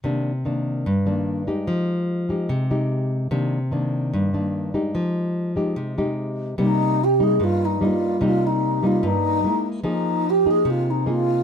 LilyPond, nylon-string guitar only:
\new Staff \with { instrumentName = "Nylon-string guitar" } { \time 4/4 \key c \minor \tempo 4 = 147 << { <ees bes d'>8 r8 <ees bes d'>4 r8 <ees bes d'>4 <aes ees' g'>8~ | <aes ees' g'>4. <aes ees' g'>4 <aes ees' g'>4. | <ees bes d'>8 r8 <ees bes d'>4. <ees bes d'>4 <aes ees' g'>8~ | <aes ees' g'>4. <aes ees' g'>4 <aes ees' g'>4. |
<g bes ees'>4 r8 <g bes ees'>4. <g bes ees'>4 | <g bes ees'>4. <g bes ees'>4. <gis ais e'>4 | <bes ees' aes'>4 r8 <bes ees' aes'>4. <bes ees' aes'>4 | } \\ { c2 g,2 | f2 c2 | c2 g,2 | f2 c2 |
c2 g,2 | c2 g,4 r4 | f2 c2 | } >> }